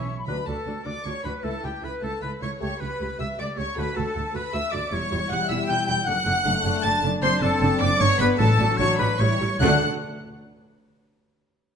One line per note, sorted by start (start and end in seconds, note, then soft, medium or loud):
0.00 0.27 B1 medium
0.00 0.17 C#6 medium
0.18 0.27 B5 medium
0.27 0.35 D2 soft
0.27 0.82 D3 medium
0.27 0.41 F#3 soft
0.27 0.35 D4 soft
0.27 0.41 D4 soft
0.27 0.36 F#4 soft
0.27 0.46 B4 medium
0.27 0.37 B4 medium
0.27 0.45 B5 medium
0.46 0.54 D2 soft
0.46 0.55 D2 soft
0.46 0.55 D4 soft
0.46 0.55 F#4 soft
0.46 0.86 A4 soft
0.46 0.87 A4 soft
0.46 0.88 A4 soft
0.46 0.86 A5 medium
0.66 0.74 D2 soft
0.66 0.74 D4 soft
0.66 0.74 F#4 soft
0.85 0.94 D2 soft
0.85 0.93 D4 soft
0.85 0.93 F#4 soft
0.85 1.05 D5 soft
0.85 1.04 D5 medium
0.85 1.05 D5 medium
0.85 1.05 D6 medium
1.05 1.13 D2 soft
1.05 1.13 D4 soft
1.05 1.13 F#4 soft
1.05 1.27 C#5 soft
1.05 1.24 C#5 medium
1.05 1.26 C#5 medium
1.05 1.25 C#6 medium
1.24 1.32 D2 soft
1.24 1.33 D2 soft
1.24 1.32 D4 soft
1.24 1.32 F#4 soft
1.24 1.44 B4 soft
1.24 1.44 B4 medium
1.24 1.45 B4 medium
1.24 1.32 B5 medium
1.43 1.52 C#2 soft
1.43 1.51 A3 soft
1.43 1.57 A3 soft
1.43 1.51 E4 soft
1.43 1.57 E4 soft
1.43 1.63 A4 medium
1.43 1.62 A4 medium
1.43 1.64 A4 medium
1.43 1.63 A5 medium
1.63 1.71 C#2 soft
1.63 1.72 C#2 soft
1.63 1.71 A3 soft
1.63 1.71 E4 soft
1.63 1.69 G4 medium
1.63 1.83 G4 soft
1.63 1.85 G4 soft
1.63 1.83 G5 medium
1.82 1.90 C#2 soft
1.82 1.91 C#2 soft
1.82 1.91 A3 soft
1.82 1.90 E4 soft
1.82 1.89 B4 medium
1.82 2.02 B4 medium
1.82 2.03 B4 medium
1.82 1.92 B5 medium
2.01 2.10 C#2 soft
2.01 2.11 C#2 soft
2.01 2.09 A3 soft
2.01 2.09 E4 soft
2.01 2.24 A4 medium
2.01 2.23 A4 soft
2.01 2.12 A4 soft
2.01 2.22 A5 medium
2.21 2.30 C#2 soft
2.21 2.29 A3 soft
2.21 2.29 E4 soft
2.21 2.41 B4 medium
2.21 2.31 B4 medium
2.21 2.44 B4 medium
2.21 2.30 B5 medium
2.41 2.50 C#2 soft
2.41 2.49 A3 soft
2.41 2.49 E4 soft
2.41 2.61 C#5 medium
2.41 2.60 C#5 medium
2.41 2.51 C#5 medium
2.41 2.50 C#6 medium
2.60 2.69 C#2 medium
2.60 2.70 C#2 soft
2.60 2.74 A3 medium
2.60 2.69 A3 soft
2.60 2.74 G4 medium
2.60 2.69 G4 soft
2.60 2.80 C#5 medium
2.60 2.82 C#5 medium
2.60 2.68 C#5 medium
2.60 2.81 C#6 medium
2.80 2.89 C#2 soft
2.80 2.88 A3 soft
2.80 2.88 G4 soft
2.80 3.19 B4 medium
2.80 3.22 B4 medium
2.80 3.19 B5 medium
3.00 3.08 C#2 medium
3.00 3.09 C#2 medium
3.00 3.08 A3 soft
3.00 3.08 G4 soft
3.18 3.27 C#2 soft
3.18 3.28 C#2 medium
3.18 3.26 A3 soft
3.18 3.26 G4 soft
3.18 3.28 E5 medium
3.18 3.39 E5 medium
3.18 3.27 E6 medium
3.37 3.47 C#2 medium
3.37 3.45 A3 soft
3.37 3.45 G4 medium
3.37 3.58 D5 medium
3.37 3.59 D5 medium
3.37 3.45 D5 medium
3.37 3.47 D6 medium
3.56 3.65 C#2 medium
3.56 3.66 C#2 medium
3.56 3.64 A3 soft
3.56 3.64 G4 soft
3.56 3.77 C#5 medium
3.56 3.81 C#5 medium
3.56 3.65 C#5 medium
3.56 3.77 C#6 medium
3.75 3.85 D2 medium
3.75 4.31 D3 medium
3.75 3.83 A3 medium
3.75 3.90 A3 medium
3.75 3.83 F#4 medium
3.75 3.90 F#4 medium
3.75 3.96 B4 medium
3.75 3.98 B4 medium
3.75 3.97 B4 medium
3.75 3.96 B5 medium
3.95 4.04 D2 medium
3.95 4.05 D2 medium
3.95 4.03 A3 soft
3.95 4.03 F#4 medium
3.95 4.33 A4 medium
3.95 4.35 A4 medium
3.95 4.35 A5 medium
4.14 4.23 D2 medium
4.14 4.22 A3 medium
4.14 4.22 F#4 soft
4.32 4.42 D2 medium
4.32 4.43 D2 medium
4.32 4.40 A3 soft
4.32 4.40 F#4 medium
4.32 4.53 B4 medium
4.32 4.44 B4 medium
4.32 4.41 B4 medium
4.32 4.54 B5 medium
4.52 4.61 D2 medium
4.52 4.62 D2 medium
4.52 4.60 A3 medium
4.52 4.60 F#4 medium
4.52 4.75 E5 medium
4.52 4.74 E5 medium
4.52 4.73 E5 medium
4.52 4.73 E6 medium
4.71 4.80 D2 medium
4.71 4.81 D2 medium
4.71 4.79 A3 medium
4.71 4.79 F#4 medium
4.71 4.94 D5 medium
4.71 4.92 D5 medium
4.71 4.91 D5 medium
4.71 4.92 D6 medium
4.91 5.00 E1 medium
4.91 5.00 E2 medium
4.91 4.99 G3 medium
4.91 6.03 G3 medium
4.91 6.03 E4 medium
4.91 4.99 E4 medium
4.91 5.29 C#5 medium
4.91 5.30 C#5 medium
4.91 5.30 C#6 medium
5.11 5.20 E1 medium
5.11 5.19 E2 medium
5.11 5.18 G3 medium
5.11 5.19 E4 medium
5.29 5.38 E1 medium
5.29 5.38 E2 medium
5.29 5.38 G3 medium
5.29 5.38 E4 medium
5.29 5.49 F#5 medium
5.29 5.36 F#5 medium
5.29 5.48 F#5 medium
5.29 5.49 F#6 loud
5.48 5.58 E1 medium
5.48 5.57 E2 medium
5.48 5.57 G3 medium
5.48 5.57 E4 medium
5.48 5.68 E5 medium
5.48 5.54 E5 medium
5.48 5.58 E5 medium
5.48 5.69 E6 medium
5.67 5.77 E1 medium
5.67 5.76 E2 medium
5.67 5.77 G3 medium
5.67 5.77 E4 medium
5.67 5.85 G5 medium
5.67 5.87 G5 medium
5.67 5.87 G6 loud
5.86 5.96 E1 medium
5.86 5.96 E2 medium
5.86 5.96 G3 medium
5.86 5.96 E4 medium
5.86 5.92 G5 medium
5.86 6.09 G5 medium
5.86 6.07 G5 medium
5.86 6.07 G6 loud
6.06 6.15 F#1 medium
6.06 6.15 F#2 medium
6.06 7.18 A3 medium
6.06 6.15 A3 medium
6.06 8.35 D4 medium
6.06 6.15 D4 medium
6.06 6.55 F#5 loud
6.06 6.84 F#5 loud
6.06 6.57 F#5 loud
6.06 6.82 F#6 loud
6.26 6.34 F#1 medium
6.26 6.34 F#2 medium
6.26 6.33 A3 medium
6.26 6.33 D4 medium
6.44 6.53 F#1 medium
6.44 6.53 F#2 medium
6.44 6.52 A3 medium
6.44 6.52 D4 medium
6.65 6.73 F#1 medium
6.65 6.72 F#2 medium
6.65 6.72 A3 medium
6.65 6.73 D4 medium
6.83 6.92 F#1 medium
6.83 6.92 F#2 medium
6.83 6.92 A3 medium
6.83 6.92 D4 medium
6.83 7.03 A5 loud
6.83 7.02 A5 loud
6.83 7.02 A5 medium
6.83 7.03 A6 loud
7.02 7.10 F#1 medium
7.02 7.11 F#2 medium
7.02 7.11 A3 medium
7.02 7.11 D4 medium
7.21 7.30 F#1 medium
7.21 7.30 F#2 medium
7.21 7.95 C4 loud
7.21 7.31 C4 medium
7.21 7.30 D4 medium
7.21 7.29 C5 loud
7.21 7.44 C5 loud
7.21 7.40 C5 loud
7.21 7.41 C6 loud
7.41 7.49 F#1 medium
7.41 7.49 F#2 medium
7.41 7.50 C4 medium
7.41 7.50 D4 medium
7.41 7.83 A4 medium
7.41 7.80 A4 medium
7.41 7.80 A4 loud
7.41 7.79 A5 loud
7.61 7.69 F#1 medium
7.61 7.69 F#2 medium
7.61 7.69 C4 medium
7.61 7.69 D4 medium
7.80 7.89 F#1 medium
7.80 7.88 F#2 medium
7.80 7.89 C4 medium
7.80 7.89 D4 medium
7.80 7.88 D5 loud
7.80 8.00 D5 loud
7.80 8.02 D5 loud
7.80 8.00 D6 loud
7.98 8.08 G1 medium
7.98 8.07 G2 medium
7.98 8.36 B3 medium
7.98 8.08 B3 medium
7.98 8.08 D4 medium
7.98 8.19 C#5 loud
7.98 8.20 C#5 loud
7.98 8.21 C#5 loud
7.98 8.20 C#6 loud
8.18 8.27 G1 medium
8.18 8.27 G2 medium
8.18 8.29 B3 medium
8.18 8.29 D4 medium
8.18 8.40 B4 loud
8.18 8.29 B4 medium
8.18 8.40 B4 loud
8.18 8.26 B5 loud
8.37 8.48 A1 medium
8.37 8.47 A2 medium
8.37 8.96 A2 medium
8.37 9.16 F#3 loud
8.37 8.48 F#3 medium
8.37 9.16 D4 medium
8.37 8.48 D4 medium
8.37 8.79 A4 loud
8.37 8.78 A4 medium
8.37 8.79 A4 loud
8.37 8.78 A5 loud
8.58 8.67 A1 medium
8.58 8.66 A2 medium
8.58 8.68 F#3 medium
8.58 8.68 D4 medium
8.77 8.87 A1 medium
8.77 8.86 A2 medium
8.77 8.88 F#3 medium
8.77 8.88 D4 medium
8.77 8.98 C#5 loud
8.77 8.88 C#5 loud
8.77 8.99 C#6 loud
8.98 9.08 A1 medium
8.98 9.07 A2 medium
8.98 9.07 F#3 medium
8.98 9.07 D4 medium
8.98 9.04 B4 medium
8.98 9.22 B4 medium
8.98 9.20 B4 medium
8.98 9.19 B5 loud
9.19 9.29 A1 medium
9.19 9.27 A2 medium
9.19 9.39 G3 medium
9.19 9.28 G3 medium
9.19 9.39 E4 medium
9.19 9.28 E4 medium
9.19 9.59 C#5 medium
9.19 9.61 C#5 medium
9.19 9.61 C#6 medium
9.40 9.49 A1 medium
9.40 9.48 A2 medium
9.40 9.48 G3 medium
9.40 9.48 E4 medium
9.60 9.84 D2 medium
9.60 9.83 D3 medium
9.60 9.80 D3 loud
9.60 9.77 A3 medium
9.60 9.84 A3 medium
9.60 9.77 D4 medium
9.60 9.84 D4 medium
9.60 9.83 F#5 medium
9.60 9.84 F#5 medium
9.60 9.78 F#5 medium
9.60 9.83 F#6 loud